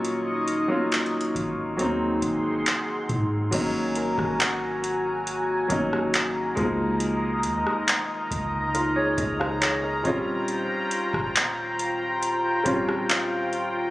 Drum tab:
CC |------------------------------------------------|x-----------------------------------------------|------------------------------------------------|------------------------------------------------|
HH |x-----x-----x-x-x-x-----x-----x-----x-----x-----|x-----x-----x-----x-----x-----x-----x-----x-----|x-----x-----x-----x-----x-----x-----x-----x-----|x-----x-----x-----x-----x-----x-----x-----x-----|
CP |------------x-----------------------x-----------|------------x-----------------------x-----------|------------x-----------------------x-----------|------------x-----------------------x-----------|
SD |------------------------------------------------|---------r-----------------------r--------------|---------r-----------------------r--------------|---------r-----------------------r--------------|
BD |------------------o-----------o-----------o-----|o--------o--------------------o-----------o-----|------------------o-----------o-----------o-----|---------o--------------------o-----------------|